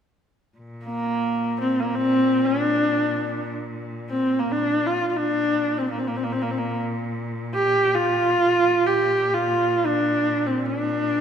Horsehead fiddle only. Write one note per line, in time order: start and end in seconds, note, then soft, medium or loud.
0.85 1.56 A#3 medium
1.61 1.81 C4 medium
1.79 1.96 A#3 medium
1.95 2.46 C4 medium
2.45 3.53 D4 medium
4.10 4.41 C4 medium
4.39 4.53 A#3 medium
4.52 4.88 D4 medium
4.87 5.09 F4 medium
5.09 5.17 F4 soft
5.16 5.80 D4 medium
5.78 5.90 C4 medium
5.90 6.00 A#3 medium
5.98 6.09 C4 soft
6.07 6.18 A#3 medium
6.16 6.25 C4 soft
6.23 6.34 A#3 soft
6.32 6.43 C4 medium
6.42 6.52 A#3 soft
6.50 6.59 C4 soft
6.58 6.80 A#3 medium
7.55 7.96 G4 medium
7.94 8.88 F4 medium
8.86 9.35 G4 medium
9.34 9.87 F4 medium
9.86 10.48 D4 medium
10.46 10.66 C4 medium
10.65 11.21 D4 medium